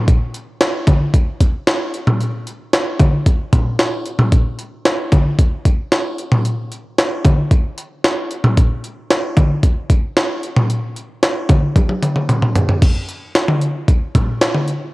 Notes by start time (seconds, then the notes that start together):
0.08 kick, closed hi-hat
0.34 closed hi-hat
0.61 snare, closed hi-hat
0.87 kick, closed hi-hat, mid tom
1.14 kick, closed hi-hat
1.41 kick, closed hi-hat
1.67 snare, closed hi-hat
1.93 closed hi-hat
2.07 mid tom
2.20 closed hi-hat
2.47 closed hi-hat
2.73 snare, closed hi-hat
2.99 kick, closed hi-hat, mid tom
3.26 kick, closed hi-hat
3.53 kick, closed hi-hat, mid tom
3.79 snare, closed hi-hat
4.06 closed hi-hat
4.19 mid tom
4.32 kick, closed hi-hat
4.59 closed hi-hat
4.86 snare, closed hi-hat
5.12 kick, closed hi-hat, mid tom
5.39 kick, closed hi-hat
5.65 kick, closed hi-hat
5.92 snare, closed hi-hat
6.18 closed hi-hat
6.32 mid tom
6.45 closed hi-hat
6.71 closed hi-hat
6.98 snare, closed hi-hat
7.24 kick, closed hi-hat, mid tom
7.51 kick, closed hi-hat
7.78 closed hi-hat
8.04 snare, closed hi-hat
8.31 closed hi-hat
8.44 mid tom
8.57 kick, closed hi-hat
8.84 closed hi-hat
9.10 snare, closed hi-hat
9.37 kick, closed hi-hat, mid tom
9.63 kick, closed hi-hat
9.90 kick, closed hi-hat
10.17 snare, closed hi-hat
10.43 closed hi-hat
10.56 mid tom
10.70 closed hi-hat
10.96 closed hi-hat
11.23 snare, closed hi-hat
11.49 kick, closed hi-hat, mid tom
11.76 kick, closed hi-hat, high tom
11.89 high tom
12.02 closed hi-hat, mid tom
12.16 mid tom
12.29 closed hi-hat, mid tom
12.42 mid tom
12.55 closed hi-hat, floor tom
12.69 floor tom
12.82 kick, closed hi-hat, crash
13.09 closed hi-hat
13.35 snare, closed hi-hat
13.48 mid tom
13.62 closed hi-hat
13.88 kick, closed hi-hat
14.15 kick, closed hi-hat, mid tom
14.41 snare, closed hi-hat
14.55 mid tom
14.68 closed hi-hat